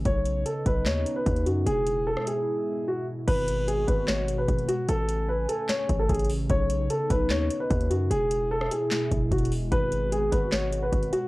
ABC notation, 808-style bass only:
X:1
M:4/4
L:1/16
Q:1/4=149
K:G#phr
V:1 name="808-style bass" clef=bass
B,,,4 z2 B,,,2 D,,2 z2 D,,2 F,,2 | E,,,4- E,,, z8 z3 | G,,,6 G,,,6 G,,,2 z2 | A,,,6 z4 A,,,2 A,,,4 |
B,,,4 z2 B,,,2 D,,2 z2 D,,2 F,,2 | E,,,6 z4 E,,,2 E,,,4 | G,,,6 G,,,6 G,,,2 z2 |]